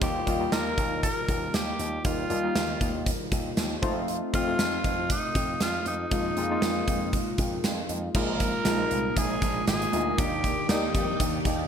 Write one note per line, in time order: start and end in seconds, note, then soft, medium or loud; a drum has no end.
0.01 0.20 D#2 loud
0.01 0.74 D#3 medium
0.01 0.18 G3 medium
0.01 0.18 A#3 medium
0.01 0.19 D#4 medium
0.01 0.19 F4 medium
0.01 0.49 G4 medium
0.01 kick loud
0.01 closed hi-hat medium
0.26 0.45 D#2 medium
0.26 0.35 G3 medium
0.26 0.35 A#3 medium
0.26 0.36 D#4 medium
0.26 0.36 F4 medium
0.26 kick medium
0.26 closed hi-hat medium
0.40 1.02 G3 medium
0.40 1.03 A#3 medium
0.40 1.03 D#4 medium
0.40 1.03 F4 medium
0.52 0.71 D#2 medium
0.52 1.00 A#4 loud
0.52 snare loud
0.52 closed hi-hat medium
0.78 1.06 D#2 medium
0.78 kick medium
0.78 closed hi-hat medium
1.03 1.56 A#4 loud
1.03 kick medium
1.03 closed hi-hat medium
1.28 1.47 D#2 medium
1.28 kick medium
1.28 closed hi-hat medium
1.54 1.72 D#2 medium
1.54 2.05 G4 medium
1.54 snare medium
1.54 closed hi-hat medium
1.79 1.98 D#2 medium
1.79 closed hi-hat medium
2.05 2.23 D#2 loud
2.05 2.77 D#3 medium
2.05 2.22 G3 medium
2.05 2.22 A#3 medium
2.05 2.22 D#4 medium
2.05 3.03 F4 medium
2.05 2.22 F4 medium
2.05 kick loud
2.05 closed hi-hat medium
2.30 2.48 D#2 medium
2.30 2.39 G3 medium
2.30 2.39 A#3 medium
2.30 2.39 D#4 medium
2.30 2.39 F4 medium
2.30 closed hi-hat medium
2.44 3.06 G3 medium
2.44 3.06 A#3 medium
2.44 3.06 D#4 medium
2.44 3.07 F4 medium
2.55 2.74 D#2 medium
2.55 snare loud
2.55 closed hi-hat medium
2.81 3.10 D#2 medium
2.81 kick medium
2.81 closed hi-hat medium
3.06 kick medium
3.06 closed hi-hat loud
3.32 3.50 D#2 medium
3.32 kick medium
3.32 closed hi-hat medium
3.57 3.76 D#2 medium
3.57 snare medium
3.57 closed hi-hat medium
3.82 4.20 F2 medium
3.82 4.24 A3 medium
3.82 4.24 C4 medium
3.82 4.24 D#4 medium
3.82 4.25 F4 medium
3.82 kick loud
3.82 closed hi-hat medium
4.08 closed hi-hat medium
4.33 4.52 F2 loud
4.33 4.42 A3 medium
4.33 4.42 C4 medium
4.33 4.42 D#4 medium
4.33 4.43 F4 medium
4.33 5.07 F4 loud
4.33 kick medium
4.33 closed hi-hat medium
4.47 5.09 A3 medium
4.47 5.10 C4 medium
4.47 5.10 D#4 medium
4.47 5.10 F4 medium
4.59 4.77 F2 medium
4.59 snare loud
4.59 closed hi-hat medium
4.84 5.13 F2 medium
4.84 kick medium
4.84 closed hi-hat medium
5.10 5.58 D#4 medium
5.10 kick medium
5.10 closed hi-hat medium
5.35 5.54 F2 medium
5.35 kick medium
5.35 closed hi-hat medium
5.60 5.79 F2 medium
5.60 5.85 F4 medium
5.60 snare medium
5.60 closed hi-hat medium
5.86 6.04 F2 medium
5.86 7.61 D#4 medium
5.86 closed hi-hat medium
6.11 6.30 F2 loud
6.11 6.28 G#3 medium
6.11 6.28 A#3 medium
6.11 6.29 D#4 medium
6.11 6.29 F4 medium
6.11 kick loud
6.11 closed hi-hat medium
6.37 6.55 F2 medium
6.37 6.46 G#3 medium
6.37 6.46 A#3 medium
6.37 6.46 D#4 medium
6.37 6.46 F4 medium
6.37 closed hi-hat medium
6.50 7.13 G#3 medium
6.50 7.13 A#3 medium
6.50 7.13 D#4 medium
6.50 7.13 F4 medium
6.62 6.81 F2 loud
6.62 snare loud
6.62 closed hi-hat medium
6.88 7.16 F2 medium
6.88 kick medium
6.88 closed hi-hat medium
7.13 kick medium
7.13 closed hi-hat medium
7.38 7.57 F2 medium
7.38 kick medium
7.38 closed hi-hat medium
7.64 7.82 F2 loud
7.64 snare medium
7.64 closed hi-hat medium
7.89 8.08 F2 medium
7.89 closed hi-hat medium
8.14 8.51 A#1 loud
8.14 8.87 A#2 medium
8.14 8.47 G#3 medium
8.14 10.16 G#3 medium
8.14 11.68 A#3 medium
8.14 8.47 A#3 medium
8.14 10.16 D#4 medium
8.14 8.47 D#4 medium
8.14 8.48 F4 medium
8.14 9.19 A#4 loud
8.14 kick loud
8.14 crash medium
8.40 kick medium
8.40 closed hi-hat medium
8.65 8.84 A#1 medium
8.65 9.30 G#3 medium
8.65 9.30 A#3 medium
8.65 9.31 D#4 medium
8.65 9.31 F4 medium
8.65 snare loud
8.65 closed hi-hat medium
8.91 9.10 C2 medium
8.91 closed hi-hat medium
9.17 9.35 A#1 loud
9.17 9.67 G#4 loud
9.17 kick medium
9.17 closed hi-hat medium
9.42 9.60 A#1 medium
9.42 kick medium
9.42 closed hi-hat medium
9.67 9.86 G#1 medium
9.67 10.20 G#4 medium
9.67 snare loud
9.67 closed hi-hat medium
9.82 closed hi-hat medium
9.92 10.11 D2 medium
9.92 10.09 G#3 medium
9.92 10.10 A#3 medium
9.92 10.10 D#4 medium
9.92 10.10 F4 medium
9.92 closed hi-hat medium
10.18 10.55 D#2 loud
10.18 10.91 D#3 medium
10.18 11.68 D#3 medium
10.18 10.50 A#3 medium
10.18 10.51 D4 medium
10.18 10.51 D#4 medium
10.18 10.68 G4 medium
10.18 10.51 G4 medium
10.18 11.68 G4 medium
10.18 11.68 D5 medium
10.18 kick loud
10.18 closed hi-hat medium
10.44 kick medium
10.44 closed hi-hat medium
10.69 10.87 D#2 medium
10.69 11.33 A#3 medium
10.69 11.67 D#4 medium
10.69 11.34 D#4 medium
10.69 11.34 G4 medium
10.69 11.34 D5 medium
10.69 snare loud
10.69 closed hi-hat medium
10.95 11.13 F2 medium
10.95 kick medium
10.95 closed hi-hat medium
11.20 11.38 D#2 loud
11.20 kick medium
11.20 closed hi-hat loud
11.45 11.64 D#2 medium
11.45 kick medium
11.45 closed hi-hat medium